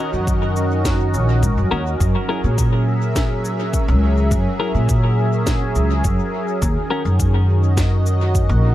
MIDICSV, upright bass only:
0, 0, Header, 1, 2, 480
1, 0, Start_track
1, 0, Tempo, 576923
1, 1667, Time_signature, 4, 2, 24, 8
1, 7278, End_track
2, 0, Start_track
2, 0, Title_t, "Upright bass"
2, 0, Program_c, 0, 32
2, 108, Note_on_c, 0, 42, 84
2, 924, Note_off_c, 0, 42, 0
2, 949, Note_on_c, 0, 34, 77
2, 1188, Note_on_c, 0, 44, 76
2, 1200, Note_off_c, 0, 34, 0
2, 1294, Note_off_c, 0, 44, 0
2, 1311, Note_on_c, 0, 42, 85
2, 1414, Note_off_c, 0, 42, 0
2, 1429, Note_on_c, 0, 39, 87
2, 1640, Note_off_c, 0, 39, 0
2, 1668, Note_on_c, 0, 42, 93
2, 1774, Note_off_c, 0, 42, 0
2, 2030, Note_on_c, 0, 46, 83
2, 3230, Note_on_c, 0, 37, 99
2, 3243, Note_off_c, 0, 46, 0
2, 3565, Note_off_c, 0, 37, 0
2, 3588, Note_on_c, 0, 42, 95
2, 3694, Note_off_c, 0, 42, 0
2, 3949, Note_on_c, 0, 46, 83
2, 4764, Note_off_c, 0, 46, 0
2, 4787, Note_on_c, 0, 37, 80
2, 4998, Note_off_c, 0, 37, 0
2, 5028, Note_on_c, 0, 42, 82
2, 5134, Note_off_c, 0, 42, 0
2, 5507, Note_on_c, 0, 39, 97
2, 5614, Note_off_c, 0, 39, 0
2, 5867, Note_on_c, 0, 42, 87
2, 7067, Note_on_c, 0, 34, 104
2, 7079, Note_off_c, 0, 42, 0
2, 7278, Note_off_c, 0, 34, 0
2, 7278, End_track
0, 0, End_of_file